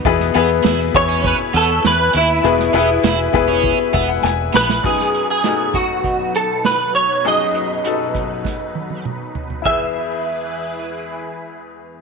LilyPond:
<<
  \new Staff \with { instrumentName = "Clean electric guitar" } { \time 4/4 \key e \major \tempo 4 = 100 r4. cis''8 b'8 a'8 b'8 e'8~ | e'2. r8 b'8 | gis'8. gis'8. fis'4 a'8 b'8 cis''8 | dis''2. r4 |
e''1 | }
  \new Staff \with { instrumentName = "Upright piano" } { \time 4/4 \key e \major <b e' gis' b'>8 <b e' gis' b'>4 <b e' cis'' gis''>4. r4 | <b e' gis' b'>8 <b e' gis' b'>4 <b e' gis' b'>4. r4 | <dis' fis' b'>4 <a dis' fis'>4. r4. | <dis' fis' gis'>4 <dis' fis' a'>4. r4. |
<e' gis' b'>1 | }
  \new Staff \with { instrumentName = "Upright piano" } { \clef bass \time 4/4 \key e \major b,4. r2 r8 | b,4. r4 e''16 fis''16 gis''8 b''8 | <b,, fis,>1 | <b,, fis,>1 |
e,1 | }
  \new Staff \with { instrumentName = "Analog synth pad" } { \time 4/4 \key e \major <e' b' gis''>1~ | <e' b' gis''>1 | <b, fis dis' b'>1~ | <b, fis dis' b'>1 |
<e e' gis' b'>1 | }
  \new Staff \with { instrumentName = "Overdriven electric guitar" } { \time 4/4 \key e \major r8 b16 r16 e'16 r8 cis'8 r16 b16 r8. e'16 r16 | r8 b16 r16 e'16 r8 cis'8 r16 b16 r8. b16 r16 | r1 | r1 |
r1 | }
  \new Staff \with { instrumentName = "Fingered electric bass" } { \clef bass \time 4/4 \key e \major e,8 e,8 e,8 e,8. r16 e,8 e,8 dis,8 | e,,8 e,,8 e,,8 e,,8. r16 e,,8 e,,8 ais,,8 | r1 | r1 |
r1 | }
  \new DrumStaff \with { instrumentName = "Drums" } \drummode { \time 4/4 <hh bd>16 sn16 hh8 <hh sn>16 hh16 <hh bd>8 <hh bd>8 hh16 hh16 <hh sn>8 hh8 | hh16 sn16 hh8 <hh sn>8 <hh bd>8 <hh bd>8 <hh bd>8 sn8 sn16 sn16 | <cymc bd>16 sn16 hh8 <hh sn>16 hh16 <hh bd>8 <hh bd>8 hh8 <hh sn>8 hh8 | hh8 hh8 hh8 <hh bd>8 <bd sn>8 tommh16 tommh16 toml8 tomfh16 tomfh16 |
<bd cymr>4 r4 r4 r4 | }
>>